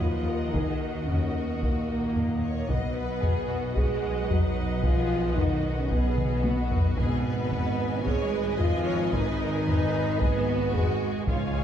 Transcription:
Already playing: D#2 A#4 D#5 F#5
0.00 F3 F4 B4, taiko low
0.26 A#4
0.52 D#3 D#4 G#4, taiko
0.80 F#4
1.06 C#3 C#4, taiko low
1.47 B2 B3
1.59 A#2 A#3, taiko
2.15 A#4, taiko low
2.42 C#5
2.68 B1 B2 B3 B4 D#5 F#5, taiko
2.94 B4
3.21 G#4, taiko low
3.48 F#4
3.76 G#3 G#4, taiko
4.28 F#3 D#4 F#4, taiko low
4.83 F3 F4 G#4, taiko
5.35 D#3 D#4 F#4, taiko low
5.76 C#3 C#4
5.90 B2 B3 G#4, taiko
6.18 taiko mid
6.44 F#4, taiko high
6.71 taiko low
6.98 G#1 B2 B3 G#4 B4 D#5 G#5, taiko
7.23 B4
7.52 taiko low
8.04 G#3 G#4 C#5, taiko
8.31 B4
8.57 F3 F4 D#5, taiko low
8.85 C#5
9.12 D#3 D#4 B4, taiko
9.41 A#4
9.67 B4, taiko low
10.20 B3 G#4 B4, taiko
10.47 F#4
10.74 G#3 G#4, taiko low
11.27 C#2 G#2 G#3 F4 C#5 F5 G#5, taiko
11.55 G#4

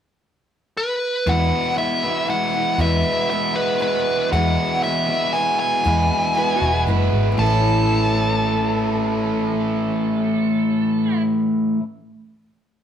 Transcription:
0.77 B4
1.26 E2 B2 E3 G#3 B3 E4 F#4 F#5
1.75 E3 G#3 B3 F#4 E5
2.03 E2 B2 E3 G#3 B3 E4 F#4
2.27 E3 G#3 B3 F#4 F#5
2.53 E3 G#3 B3 F#4
2.78 E2 B2 E3 G#3 B3 E4 F#4 E5
3.30 E3 G#3 B3 F#4 E5
3.54 E2 B2 E3 G#3 B3 E4 B4
3.80 E3 G#3 B3 F#4 B4
4.30 E2 B2 E3 G#3 B3 E4 F#5
4.35 F#4
4.83 E3 G#3 B3 F#4 E5
5.09 E2 B2 E3 G#3 B3 E4
5.33 E3 G#3 B3 F#4 G#5
5.59 G#5
5.84 E2 B2 E3 G#3 B3 E4 F#4
6.34 E3 G#3 B3 F#4
6.38 B4
6.56 F#4
6.61 E1 E2 B2 E3 G#3 B3 E4
6.72 B4
6.87 F#1 E3 G#3 B3 F#4
6.91 B4
7.12 G#1
7.32 A2
7.38 A1 A2 E3 A3 A5
7.42 C#4 E4 A4
7.46 C#4 E4

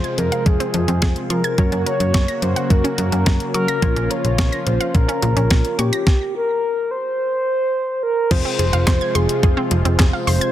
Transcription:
Already playing: C3 F3 G#3 C4 F4 G#4 C5
0.04 G#6, closed hi-hat
0.18 F2 A#4, closed hi-hat
0.32 F5, closed hi-hat
0.46 F2 G#4, kick, closed hi-hat
0.60 C4, closed hi-hat
0.74 F2 F3, closed hi-hat
0.88 F2 C4, closed hi-hat
1.02 F2 G#4, kick, snare, closed hi-hat
1.16 closed hi-hat
1.30 F3 A#4 C6, closed hi-hat
1.44 G#6, closed hi-hat
1.58 F#2 F#3 A#3 C#4 F#4 A#4 C#5, kick, closed hi-hat
1.72 F#2 C#4, closed hi-hat
1.86 A#4 C#5, closed hi-hat
2.00 F#2, closed hi-hat
2.14 F#2 C#6, kick, snare, closed hi-hat
2.28 A#6, closed hi-hat
2.42 F#2 C5, closed hi-hat
2.56 F#5, closed hi-hat
2.70 F#2 A#4, kick, closed hi-hat
2.84 C#4, closed hi-hat
2.98 F#2 F#3, closed hi-hat
3.12 F#2 C#4, closed hi-hat
3.26 F#2 A#4, kick, snare, closed hi-hat
3.40 closed hi-hat
3.54 F#3 A#4 C#6, closed hi-hat
3.68 A#6, closed hi-hat
3.82 A#1 F3 C#4 F4 A#4 C#5, kick, closed hi-hat
3.96 A#1 C#4, closed hi-hat
4.10 A#4 C#5, closed hi-hat
4.24 A#1, closed hi-hat
4.38 A#1 C#6, kick, snare, closed hi-hat
4.52 A#6, closed hi-hat
4.66 A#1 C5, closed hi-hat
4.80 F5, closed hi-hat
4.95 A#1 A#4, kick, closed hi-hat
5.08 C#4, closed hi-hat
5.22 A#1 F3, closed hi-hat
5.36 A#1 C#4, closed hi-hat
5.50 A#1 A#4, kick, snare, closed hi-hat
5.65 closed hi-hat
5.79 A#2 G4 C#6, closed hi-hat
5.93 A#6, closed hi-hat
6.07 kick, snare
6.35 A#4
6.91 C5
8.03 A#4
8.31 F1 F3 C4 F4 G#4 C5, kick, closed hi-hat, crash
8.45 C4
8.59 F1 G#4 C5, closed hi-hat
8.73 F1 F5, closed hi-hat
8.87 F1 C5 C6, kick, snare, clap, closed hi-hat
9.01 G#6
9.15 F1 G#4 C6, closed hi-hat
9.29 closed hi-hat
9.43 F1 G#4, kick, closed hi-hat
9.57 C4
9.71 F1 F3, closed hi-hat
9.85 F1 C4, closed hi-hat
9.99 F1 G#4, kick, snare, clap, closed hi-hat
10.13 F5
10.27 F1 C5 C6, open hi-hat
10.41 G#6, closed hi-hat

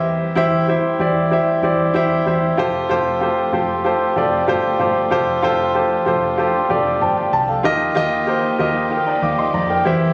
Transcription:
Already playing: E2 E3 G3 C4 E4 G4 C5 E5
0.35 E2 E4 G4 C5 E5
0.68 E4 G4 C5 E5
0.99 E2 E4 G4 C5 D5
1.31 E4 G4 C5 E5
1.62 E2 E4 G4 C5 D5
1.94 E2 E4 G4 C5 E5
2.26 E2 E4 G4 C5 E5
2.57 F1 F3 A3 F4 G4 A4 C5
2.89 F1 F4 G4 A4 C5
3.21 F4 G4 A4 C5
3.52 F1 F4 G4 A4 C5
3.84 F4 G4 A4 C5
4.16 F1 F4 G4 A4 D5
4.47 G1 F4 G4 A4 C5
4.79 G1 F4 G4 A4 C5
5.10 F1 D4 F4 G4 A4 C5
5.42 F1 F4 G4 A4 C5
5.74 F4 G4 A4 C5
6.06 F1 F4 G4 A4 C5
6.37 F4 G4 A4 C5
6.69 F1 F4 G4 A4 D5
7.01 G1 C5 G5 A5
7.17 G5
7.32 C2 A5
7.49 A4 F5
7.63 D#2 D#3 A#3 D#4 F4 G4 A#4 D#5
7.95 D#2 F4 G4 A#4 D#5
8.26 F4 G4 A#4 C5
8.59 D#2 F4 G4 A#4 D#5
8.91 A#4 G5
9.07 D5 A#5
9.22 D#2 F5 D6
9.38 D#5 C6
9.54 F2 D5 A#5
9.69 A#4 G5
9.85 E2 E3 G3 C4 E4 G4 C5 E5

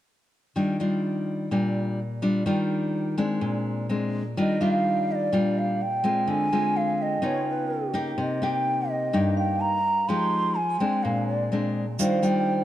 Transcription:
0.56 D#3 G3 D4 F4
0.80 G3 D4 F4
1.51 A#2 G3 D4 F4
2.22 G3 D4 F4
2.46 D#3 G3 D4 F4
3.18 G#3 C4 D4
3.41 A#2
3.89 G#3 C4 D4
4.37 D#3 G3 D4 F4 D#5
4.61 G3 D4 F4 F5
5.12 D5 D#5
5.32 A#2 G3 D4 F4
5.58 F5
5.82 G5
6.04 G#3 C4 F4
6.27 D3 G#5
6.52 G#3 C4 F4
6.77 F5
6.98 G5
7.02 D#5
7.22 C#3 B3 D#4 F4
7.26 C#5
7.50 B4
7.94 A#3 D#4 G4
8.18 C3 D#5
8.42 A#3 D#4 G4 G5
8.90 D#5
9.13 G2 A#3 D#4 G4
9.37 F5 G5
9.60 A#5
10.08 F3 G#3 D#4 G4 C6
10.55 G#5
10.80 G#3 C4 D4 G5
11.03 A#2 F5
11.28 D5
11.52 G#3 C4 D4
11.99 D#3 G3 D4 F4 C5 F5, shaker
12.22 G3 D4 F4 G5, shaker

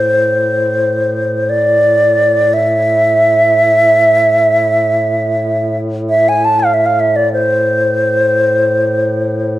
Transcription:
Already playing: A2 C5
1.49 D5
2.53 E5
6.09 E5
6.29 G#5
6.45 A5
6.59 F5
6.74 E5
6.86 F5
7.00 E5
7.16 D5
7.33 C5

